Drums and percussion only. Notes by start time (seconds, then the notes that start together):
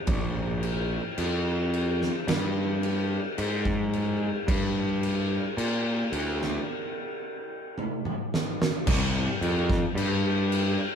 0.07 kick, crash
0.63 crash
1.18 crash
1.74 crash
2.01 snare
2.28 snare, crash
2.83 crash
3.38 crash
3.65 kick
3.93 crash
4.48 kick, crash
5.03 crash
5.58 crash
6.13 crash
6.42 snare
7.78 high tom
8.05 mid tom
8.34 snare
8.62 snare
8.87 kick, crash
9.42 crash
9.70 kick, snare
9.97 crash
10.52 crash